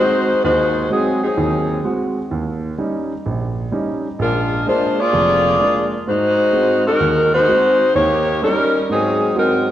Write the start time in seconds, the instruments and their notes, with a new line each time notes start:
Already playing: grand piano G#3 C4 F#4, saxophone section G#3 F#4 C5
0.00 saxophone section D#4
0.44 grand piano D#2, saxophone section G#3 D#4 F#4 C5
0.90 saxophone section F#3 C4 D#4 G#4, grand piano G#3 C4 F#4
1.23 saxophone section F#3 C4 D#4 G#4
1.37 grand piano D#2 D#3
1.84 grand piano G#3 C4 F#4
2.31 grand piano D#2
2.78 grand piano G3 C#4 D#4
3.26 grand piano A#1
3.72 grand piano G3 C#4 D#4
4.19 grand piano A#1, saxophone section G#3 D4 F4 A#4
4.66 grand piano G#3 A#3 D4, saxophone section G#3 D4 F4 C5
5.00 saxophone section A#3 F4 G#4 D5
5.13 grand piano F1 F2
5.60 grand piano G#3 A#3 D4
6.07 grand piano G#2, saxophone section G#3 D#4 F#4 C5
6.53 grand piano G#3 C4 F#4
6.87 saxophone section G#3 D#4 F#4 A#4
7.00 grand piano D#2 D#3
7.34 saxophone section G#3 D#4 F#4 C5
7.48 grand piano G#3 C4 F#4
7.95 grand piano D#2, saxophone section A#3 D#4 G4 C#5
8.42 grand piano G3 C#4 D#4, saxophone section G3 C#4 D#4 A#4
8.89 grand piano G#2, saxophone section F#3 C4 D#4 G#4
9.36 saxophone section F#3 C4 D#4 A#4, grand piano G#3 C4 F#4